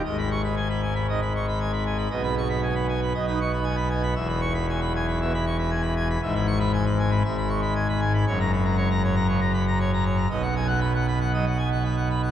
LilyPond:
<<
  \new Staff \with { instrumentName = "Pipe organ" } { \time 4/4 \key gis \minor \tempo 4 = 117 dis''16 b''16 cis'''16 b''16 gis''16 b''16 gis''16 b''16 dis''16 b''16 cis'''16 b''16 gis''16 b''16 gis''16 b''16 | dis''16 b''16 cis'''16 b''16 gis''16 b''16 gis''16 b''16 dis''16 b''16 cis'''16 b''16 gis''16 b''16 gis''16 b''16 | e''16 b''16 cis'''16 b''16 gis''16 b''16 gis''16 b''16 e''16 b''16 cis'''16 b''16 gis''16 b''16 gis''16 b''16 | e''16 b''16 cis'''16 b''16 gis''16 b''16 gis''16 b''16 e''16 b''16 cis'''16 b''16 gis''16 b''16 gis''16 b''16 |
cis''16 ais''16 b''16 ais''16 cis''16 ais''16 cis''16 ais''16 cis''16 ais''16 b''16 ais''16 cis''16 ais''16 cis''16 ais''16 | dis''16 fis''16 gis''16 fis''16 b''16 fis''16 b''16 fis''16 dis''16 fis''16 gis''16 fis''16 b''16 fis''16 b''16 fis''16 | }
  \new Staff \with { instrumentName = "Pipe organ" } { \clef bass \time 4/4 \key gis \minor << { gis,2 dis16 r4. r16 | b,2 b,16 dis'16 r4. | e,2 b,16 r4. r16 | gis,2 gis,2 |
fis,2 cis16 r4. r16 | b,2 fis16 r4. r16 | } \\ { gis,,1 | b,,2 b,,2 | e,,1 | gis,,2 gis,,2 |
fis,,1 | b,,1 | } >> }
>>